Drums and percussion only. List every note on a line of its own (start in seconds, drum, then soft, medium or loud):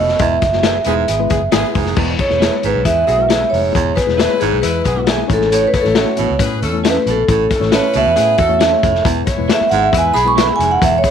0.09 snare soft
0.19 kick loud
0.19 closed hi-hat loud
0.42 kick loud
0.42 snare soft
0.42 closed hi-hat medium
0.53 snare soft
0.63 snare loud
0.63 closed hi-hat medium
0.84 closed hi-hat medium
1.08 closed hi-hat medium
1.30 kick medium
1.30 closed hi-hat medium
1.52 snare loud
1.52 closed hi-hat medium
1.75 kick loud
1.75 open hi-hat medium
1.86 snare soft
1.96 kick loud
1.96 crash loud
2.19 kick medium
2.19 closed hi-hat medium
2.30 snare soft
2.42 snare loud
2.42 closed hi-hat medium
2.63 closed hi-hat medium
2.85 kick medium
2.85 closed hi-hat medium
3.08 closed hi-hat medium
3.30 snare loud
3.30 closed hi-hat medium
3.54 open hi-hat medium
3.75 kick loud
3.75 closed hi-hat medium
3.97 kick loud
3.97 snare soft
3.97 closed hi-hat medium
4.09 snare soft
4.20 snare loud
4.20 closed hi-hat medium
4.41 closed hi-hat medium
4.63 closed hi-hat medium
4.85 kick medium
4.85 closed hi-hat medium
5.07 snare loud
5.07 closed hi-hat medium
5.30 kick medium
5.30 closed hi-hat medium
5.41 snare soft
5.52 closed hi-hat loud
5.74 kick medium
5.74 snare soft
5.74 closed hi-hat medium
5.85 snare soft
5.95 snare loud
5.95 closed hi-hat medium
6.17 closed hi-hat medium
6.39 kick loud
6.39 closed hi-hat medium
6.62 closed hi-hat medium
6.85 snare loud
6.85 closed hi-hat loud
7.07 closed hi-hat medium
7.29 kick loud
7.29 closed hi-hat medium
7.51 kick loud
7.51 snare soft
7.51 closed hi-hat medium
7.62 snare soft
7.72 snare loud
7.72 closed hi-hat medium
7.93 closed hi-hat medium
8.17 closed hi-hat medium
8.38 kick medium
8.38 closed hi-hat medium
8.61 snare loud
8.61 closed hi-hat medium
8.83 kick loud
8.83 closed hi-hat medium
8.95 snare soft
9.05 kick loud
9.05 closed hi-hat medium
9.27 kick loud
9.27 snare soft
9.27 closed hi-hat medium
9.49 snare loud
9.49 closed hi-hat medium
9.71 closed hi-hat medium
9.93 kick loud
9.93 closed hi-hat loud
10.16 closed hi-hat medium
10.38 snare loud
10.38 closed hi-hat loud
10.60 closed hi-hat medium
10.82 kick loud
10.82 closed hi-hat loud
11.04 kick loud
11.04 closed hi-hat medium